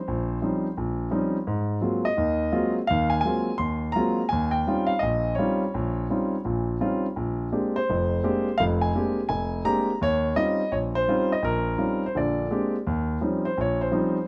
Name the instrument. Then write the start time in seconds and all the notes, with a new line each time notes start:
grand piano
Already playing: C5
0.08 A#1
0.42 F3 G3 C4 C#4 D#4
0.77 A#1
1.11 F3 G3 C4 C#4 D#4
1.47 G#2
1.81 F#3 G#3 A#3 C4 F4
2.05 D#5
2.17 D#2 D#3
2.52 F#3 G#3 A#3 C4 F4
2.87 D#2 D#3 F5
3.10 G#5
3.21 G#5
3.25 F#3 G#3 A#3 C4 F4
3.58 D#2 C6
3.92 F#3 A#3 F4 A#5
3.96 G#3 C4
4.29 D#2 G#5
4.51 G5
4.67 G3 C4 C#4 D#4 F4
4.87 F5
4.99 A#1 A#2 D#5
5.35 G3 C4 C#4 D#4 F4 C#5
5.74 A#1
6.10 G3 C4 C#4 D#4 F4
6.45 A#1 A#2
6.81 G3 C4 C#4 D#4 F4
7.16 A#1
7.52 G#3 A#3 C4 D4 G4
7.76 C5
7.89 F1 F2
8.23 G#3 A#3 C4 D4 G4
8.58 F1 F2 F5
8.81 G#5
8.95 G#3 A#3 C4 D4 G4
9.29 F1 G#5
9.65 G#3 A#3 C4 D4 G4 A#5
10.01 D#2 C#5
10.36 G3 C4 C#4 D#4 F4 D#5
10.72 A#1 C#5
10.95 C5
11.08 G3 C4 C#4 D#4 F4
11.32 D#5
11.42 A#1 A#4
11.78 G3 C4 C#4 D#4 F4
12.06 C5
12.15 A#1 D3 D5
12.51 G#3 A#3 C4 D4 G4
12.87 D#2
13.21 F3 G3 C4 C#4 D#4
13.45 C5
13.57 A#1 C#5
13.81 C5
13.91 F3 G3 C4 C#4 D#4